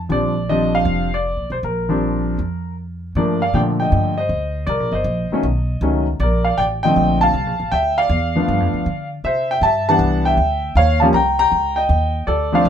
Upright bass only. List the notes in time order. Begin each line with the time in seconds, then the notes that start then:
0.10 A#1
0.85 F1
1.37 A#1
1.50 B1
1.63 A#1
2.39 F2
3.15 G2
3.54 A#2
3.92 G2
4.29 D2
4.67 C2
4.80 A#1
4.92 G1
5.04 A#1
5.31 muted upright bass stroke
5.43 B1
5.81 C#2
6.20 A#1
6.58 A1
6.96 A#1
7.34 C2
7.46 A#1
7.60 A1
7.72 D2
8.09 E2
8.48 G2
8.60 F2
8.74 D2
8.86 D3
9.24 C3
9.61 G2
9.99 C2
10.37 D2
10.75 D#2
11.13 C2
11.52 C#2
11.89 D#2
12.28 D2
12.65 A#1